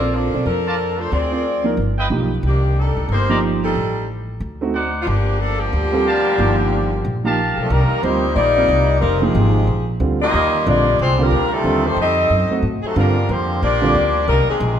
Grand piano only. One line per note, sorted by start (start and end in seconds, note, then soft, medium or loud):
0.01 0.32 C4 medium
0.01 0.32 F4 medium
0.01 0.32 A#4 medium
0.01 0.33 D5 medium
0.34 0.46 C4 medium
0.34 0.46 F4 soft
0.34 0.46 A#4 medium
0.34 0.46 D5 medium
1.32 1.44 C4 medium
1.32 1.44 F4 soft
1.32 1.44 A#4 medium
1.32 1.44 D5 medium
1.64 1.76 F3 medium
1.64 1.77 A#3 medium
1.64 1.77 D#4 medium
1.64 1.77 A#4 medium
2.10 2.29 F3 medium
2.10 2.29 A#3 soft
2.10 2.29 D#4 medium
2.10 2.29 G4 medium
3.29 3.73 F3 medium
3.29 3.73 A#3 medium
3.29 3.73 D#4 medium
3.29 3.74 G4 medium
4.61 4.73 A3 medium
4.61 4.73 C4 medium
4.61 4.74 D#4 medium
4.61 4.74 F#4 medium
5.92 6.04 G3 medium
5.92 6.04 C4 medium
5.92 6.05 F4 medium
5.92 6.05 A4 medium
6.39 6.88 D#3 soft
6.39 6.88 F3 medium
6.39 6.88 A#3 medium
6.39 6.89 G4 medium
7.24 7.36 F3 medium
7.24 7.37 A#3 medium
7.24 7.37 D#4 medium
7.24 7.37 G4 medium
8.03 8.22 G3 medium
8.03 8.22 C4 medium
8.03 8.22 F4 medium
8.03 8.22 A#4 medium
8.57 8.68 G3 medium
8.57 8.68 C4 medium
8.57 8.69 F4 medium
8.57 8.69 A#4 medium
9.22 9.65 F3 medium
9.22 9.66 A#3 medium
9.22 9.66 D#4 medium
9.22 9.66 G5 medium
10.00 10.19 D3 medium
10.00 10.19 G3 medium
10.00 10.19 C4 medium
10.00 10.19 F4 medium
10.66 10.85 D3 medium
10.66 10.85 G3 medium
10.66 10.85 C4 soft
10.66 10.85 F4 medium
11.19 11.31 D3 medium
11.19 11.31 G3 medium
11.19 11.31 C4 medium
11.19 11.31 F4 medium
11.64 11.83 D3 medium
11.64 11.83 G3 medium
11.64 11.83 C4 medium
11.64 11.83 F4 medium
12.51 12.62 F#3 medium
12.51 12.62 A3 medium
12.51 12.63 C4 medium
12.51 12.63 F#4 medium
12.96 13.14 D3 medium
12.96 13.14 G3 medium
12.96 13.15 C4 medium
12.96 13.15 F4 medium
13.82 13.93 D3 medium
13.82 13.94 G3 medium
13.82 13.94 C4 medium
13.82 13.94 F4 medium